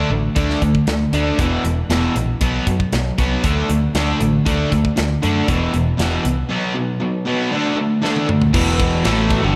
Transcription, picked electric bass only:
0.10 0.28 A1 medium
0.36 0.54 D2 medium
0.62 0.79 D2 medium
0.87 1.05 D2 medium
1.13 1.30 D2 medium
1.39 1.56 E1 medium
1.64 1.82 E1 medium
1.89 2.07 E1 medium
2.16 2.33 A#1 medium
2.41 2.59 B1 medium
2.67 2.84 F#2 medium
2.92 3.10 B1 medium
3.19 3.36 C2 medium
3.44 3.61 D2 medium
3.69 3.87 D2 medium
3.95 4.12 D2 medium
4.21 4.38 A1 medium
4.46 4.64 D2 medium
4.72 4.89 D2 medium
4.98 5.15 D2 medium
5.24 5.41 F#2 medium
5.48 5.66 E1 medium
5.74 5.91 E1 medium
5.99 6.17 E1 medium
6.25 6.42 C2 medium
8.54 9.01 E1 medium
9.05 9.41 A1 loud
9.43 9.55 G1 loud

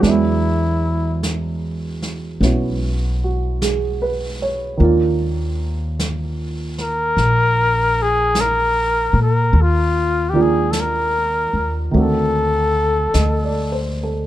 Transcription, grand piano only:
0.00 4.76 F#3 soft
0.00 4.77 G#3 soft
0.00 2.40 B3 soft
0.05 4.80 D4 soft
0.05 2.42 E4 soft
2.41 4.79 B3 soft
2.41 4.80 C#4 soft
2.41 4.80 E4 soft
2.41 3.23 F#4 soft
3.24 3.85 F#4 soft
3.62 4.36 G#4 soft
4.02 4.63 B4 soft
4.42 5.03 C#5 soft
4.77 9.53 D#3 soft
4.77 9.54 F3 soft
4.77 9.54 A#3 soft
4.82 9.55 D4 soft
4.82 9.56 F4 soft
10.33 11.90 D#3 soft
10.33 11.93 F3 soft
10.33 11.93 A#3 soft
10.33 11.93 D4 soft
10.33 11.93 F4 medium
11.91 14.27 D#3 soft
11.91 14.27 A3 soft
11.91 14.27 C4 soft
11.91 14.27 D4 soft
11.96 14.27 F#4 soft
13.14 13.69 D#5 soft
13.44 13.95 D5 soft
13.72 14.10 C5 soft
14.03 14.27 A4 soft

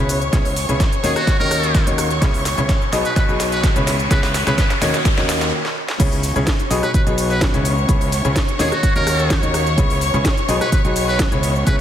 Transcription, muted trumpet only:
1.04 1.14 G#4 medium
1.16 1.37 F#4 medium
1.40 1.87 A#4 medium
3.05 3.12 B4 medium
3.16 3.24 B4 medium
3.52 3.64 B4 medium
4.11 4.19 B4 medium
4.23 4.30 B4 medium
4.47 4.54 B4 medium
4.58 4.66 B4 medium
6.83 6.90 B4 medium
6.94 7.02 B4 medium
7.30 7.42 B4 medium
8.60 8.70 G#4 medium
8.72 8.93 F#4 medium
8.96 9.43 A#4 medium
10.61 10.68 B4 medium
10.72 10.80 B4 medium
11.08 11.20 B4 medium
11.67 11.75 B4 medium

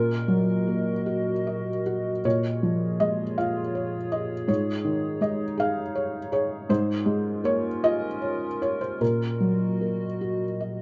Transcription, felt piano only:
0.00 2.20 A#2 medium
0.00 1.83 A#4 medium
0.28 0.91 F#3 soft
0.68 1.30 A#3 soft
1.06 1.70 F#4 soft
1.47 2.10 D#5 soft
1.86 2.25 F#4 soft
2.25 4.45 A#2 soft
2.25 2.96 C#5 medium
2.63 3.23 F3 soft
3.00 3.60 G#3 soft
3.00 3.35 D#5 medium
3.38 3.97 F4 soft
3.38 4.08 F5 medium
3.75 4.34 C#5 soft
4.12 4.49 F4 soft
4.12 4.46 D#5 medium
4.48 6.64 G#2 medium
4.48 5.18 C#5 medium
4.85 5.44 D#3 soft
5.21 5.80 G#3 soft
5.21 5.56 D#5 medium
5.58 6.17 G#4 soft
5.58 6.29 F5 medium
5.95 6.31 C#5 soft
6.32 6.69 G#4 soft
6.32 6.67 C#5 medium
6.69 8.97 G#2 medium
6.69 7.41 C5 medium
7.06 7.67 G#3 medium
7.44 8.06 A#3 soft
7.44 7.81 C#5 medium
7.84 8.46 F4 soft
7.84 8.58 D#5 medium
8.22 8.60 C#5 soft
8.62 9.01 F4 soft
8.62 8.80 C#5 medium
8.81 9.00 C5 medium
9.01 10.82 A#2 soft
9.01 10.82 A#4 medium
9.40 10.04 F#3 soft
9.81 10.44 A#3 soft
10.21 10.82 F#4 soft
10.61 10.82 D#5 soft

